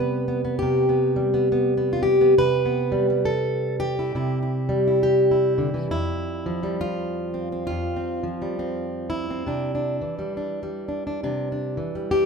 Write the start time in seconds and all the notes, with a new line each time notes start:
Already playing: C3 G3 B4
0.00 B3
0.28 B3
0.45 B3
0.59 C3 G4
0.89 B3
1.16 G3
1.34 B3
1.52 B3
1.77 B3
1.93 F4
2.03 G4
2.21 B3
2.38 C3 B4
2.65 B3
2.92 G3
3.10 G3
3.25 A4
3.80 G4
3.99 E4
4.15 C3 E4
4.42 E4
4.69 G3
4.87 E4
5.03 G4
5.31 E4
5.58 D3
5.74 E3
5.91 F2 E4
6.46 F3
6.63 G3
6.81 F4
7.34 C4
7.52 C4
7.67 F2 F4
7.96 C4
8.23 F3
8.42 G3
8.59 C4
9.10 E4
9.30 C4
9.46 C3 D4
9.75 D4
10.01 E3
10.19 G3
10.37 D4
10.63 G3
10.88 D4
11.07 D4
11.23 C3 D4
11.52 D4
11.77 E3
11.95 G3
12.11 D4 G4